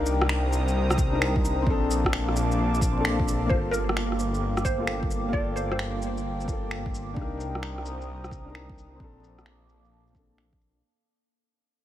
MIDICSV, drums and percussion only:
0, 0, Header, 1, 2, 480
1, 0, Start_track
1, 0, Key_signature, -2, "minor"
1, 0, Tempo, 458015
1, 1748, Time_signature, 4, 2, 24, 8
1, 12416, End_track
2, 0, Start_track
2, 0, Title_t, "Drums"
2, 64, Note_on_c, 9, 82, 54
2, 169, Note_off_c, 9, 82, 0
2, 226, Note_on_c, 9, 37, 70
2, 308, Note_on_c, 9, 26, 104
2, 331, Note_off_c, 9, 37, 0
2, 413, Note_off_c, 9, 26, 0
2, 552, Note_on_c, 9, 82, 52
2, 657, Note_off_c, 9, 82, 0
2, 713, Note_on_c, 9, 82, 30
2, 818, Note_off_c, 9, 82, 0
2, 948, Note_on_c, 9, 37, 70
2, 948, Note_on_c, 9, 82, 30
2, 1025, Note_on_c, 9, 36, 104
2, 1030, Note_off_c, 9, 82, 0
2, 1030, Note_on_c, 9, 82, 51
2, 1053, Note_off_c, 9, 37, 0
2, 1130, Note_off_c, 9, 36, 0
2, 1134, Note_off_c, 9, 82, 0
2, 1275, Note_on_c, 9, 26, 105
2, 1380, Note_off_c, 9, 26, 0
2, 1423, Note_on_c, 9, 36, 99
2, 1518, Note_on_c, 9, 82, 55
2, 1528, Note_off_c, 9, 36, 0
2, 1622, Note_off_c, 9, 82, 0
2, 1746, Note_on_c, 9, 36, 114
2, 1851, Note_off_c, 9, 36, 0
2, 2000, Note_on_c, 9, 82, 58
2, 2105, Note_off_c, 9, 82, 0
2, 2145, Note_on_c, 9, 36, 55
2, 2161, Note_on_c, 9, 37, 70
2, 2234, Note_on_c, 9, 26, 107
2, 2249, Note_off_c, 9, 36, 0
2, 2266, Note_off_c, 9, 37, 0
2, 2339, Note_off_c, 9, 26, 0
2, 2396, Note_on_c, 9, 37, 39
2, 2476, Note_on_c, 9, 82, 58
2, 2500, Note_off_c, 9, 37, 0
2, 2581, Note_off_c, 9, 82, 0
2, 2635, Note_on_c, 9, 82, 31
2, 2740, Note_off_c, 9, 82, 0
2, 2876, Note_on_c, 9, 82, 33
2, 2948, Note_on_c, 9, 36, 103
2, 2955, Note_off_c, 9, 82, 0
2, 2955, Note_on_c, 9, 82, 58
2, 3053, Note_off_c, 9, 36, 0
2, 3060, Note_off_c, 9, 82, 0
2, 3194, Note_on_c, 9, 26, 107
2, 3299, Note_off_c, 9, 26, 0
2, 3348, Note_on_c, 9, 36, 100
2, 3438, Note_on_c, 9, 82, 56
2, 3453, Note_off_c, 9, 36, 0
2, 3543, Note_off_c, 9, 82, 0
2, 3671, Note_on_c, 9, 36, 114
2, 3776, Note_off_c, 9, 36, 0
2, 3916, Note_on_c, 9, 82, 56
2, 4021, Note_off_c, 9, 82, 0
2, 4080, Note_on_c, 9, 37, 65
2, 4158, Note_on_c, 9, 26, 106
2, 4185, Note_off_c, 9, 37, 0
2, 4263, Note_off_c, 9, 26, 0
2, 4318, Note_on_c, 9, 37, 36
2, 4395, Note_on_c, 9, 82, 58
2, 4423, Note_off_c, 9, 37, 0
2, 4500, Note_off_c, 9, 82, 0
2, 4552, Note_on_c, 9, 82, 31
2, 4657, Note_off_c, 9, 82, 0
2, 4791, Note_on_c, 9, 37, 67
2, 4791, Note_on_c, 9, 82, 32
2, 4869, Note_on_c, 9, 36, 102
2, 4874, Note_off_c, 9, 82, 0
2, 4874, Note_on_c, 9, 82, 53
2, 4895, Note_off_c, 9, 37, 0
2, 4974, Note_off_c, 9, 36, 0
2, 4979, Note_off_c, 9, 82, 0
2, 5107, Note_on_c, 9, 26, 97
2, 5212, Note_off_c, 9, 26, 0
2, 5268, Note_on_c, 9, 36, 95
2, 5352, Note_on_c, 9, 82, 58
2, 5373, Note_off_c, 9, 36, 0
2, 5457, Note_off_c, 9, 82, 0
2, 5588, Note_on_c, 9, 36, 115
2, 5693, Note_off_c, 9, 36, 0
2, 5835, Note_on_c, 9, 82, 54
2, 5940, Note_off_c, 9, 82, 0
2, 5991, Note_on_c, 9, 37, 63
2, 6070, Note_on_c, 9, 26, 106
2, 6095, Note_off_c, 9, 37, 0
2, 6175, Note_off_c, 9, 26, 0
2, 6310, Note_on_c, 9, 82, 55
2, 6414, Note_off_c, 9, 82, 0
2, 6470, Note_on_c, 9, 82, 32
2, 6575, Note_off_c, 9, 82, 0
2, 6712, Note_on_c, 9, 82, 31
2, 6789, Note_on_c, 9, 36, 100
2, 6794, Note_off_c, 9, 82, 0
2, 6794, Note_on_c, 9, 82, 53
2, 6893, Note_off_c, 9, 36, 0
2, 6899, Note_off_c, 9, 82, 0
2, 7033, Note_on_c, 9, 26, 101
2, 7138, Note_off_c, 9, 26, 0
2, 7188, Note_on_c, 9, 36, 99
2, 7278, Note_on_c, 9, 82, 57
2, 7292, Note_off_c, 9, 36, 0
2, 7383, Note_off_c, 9, 82, 0
2, 7509, Note_on_c, 9, 36, 112
2, 7614, Note_off_c, 9, 36, 0
2, 7759, Note_on_c, 9, 82, 54
2, 7864, Note_off_c, 9, 82, 0
2, 7916, Note_on_c, 9, 37, 59
2, 7995, Note_on_c, 9, 26, 103
2, 8020, Note_off_c, 9, 37, 0
2, 8100, Note_off_c, 9, 26, 0
2, 8155, Note_on_c, 9, 37, 35
2, 8234, Note_on_c, 9, 82, 52
2, 8260, Note_off_c, 9, 37, 0
2, 8339, Note_off_c, 9, 82, 0
2, 8398, Note_on_c, 9, 82, 30
2, 8503, Note_off_c, 9, 82, 0
2, 8638, Note_on_c, 9, 37, 61
2, 8638, Note_on_c, 9, 82, 31
2, 8712, Note_on_c, 9, 36, 100
2, 8722, Note_off_c, 9, 82, 0
2, 8722, Note_on_c, 9, 82, 49
2, 8743, Note_off_c, 9, 37, 0
2, 8817, Note_off_c, 9, 36, 0
2, 8826, Note_off_c, 9, 82, 0
2, 8959, Note_on_c, 9, 26, 104
2, 9064, Note_off_c, 9, 26, 0
2, 9112, Note_on_c, 9, 36, 99
2, 9203, Note_on_c, 9, 82, 53
2, 9217, Note_off_c, 9, 36, 0
2, 9308, Note_off_c, 9, 82, 0
2, 9432, Note_on_c, 9, 36, 112
2, 9537, Note_off_c, 9, 36, 0
2, 9683, Note_on_c, 9, 82, 51
2, 9788, Note_off_c, 9, 82, 0
2, 9836, Note_on_c, 9, 37, 57
2, 9836, Note_on_c, 9, 82, 27
2, 9914, Note_on_c, 9, 26, 95
2, 9941, Note_off_c, 9, 37, 0
2, 9941, Note_off_c, 9, 82, 0
2, 10019, Note_off_c, 9, 26, 0
2, 10156, Note_on_c, 9, 82, 47
2, 10261, Note_off_c, 9, 82, 0
2, 10319, Note_on_c, 9, 82, 28
2, 10424, Note_off_c, 9, 82, 0
2, 10557, Note_on_c, 9, 82, 28
2, 10634, Note_on_c, 9, 36, 98
2, 10642, Note_off_c, 9, 82, 0
2, 10642, Note_on_c, 9, 82, 50
2, 10739, Note_off_c, 9, 36, 0
2, 10747, Note_off_c, 9, 82, 0
2, 10880, Note_on_c, 9, 26, 95
2, 10985, Note_off_c, 9, 26, 0
2, 11032, Note_on_c, 9, 36, 94
2, 11119, Note_on_c, 9, 82, 49
2, 11137, Note_off_c, 9, 36, 0
2, 11224, Note_off_c, 9, 82, 0
2, 12416, End_track
0, 0, End_of_file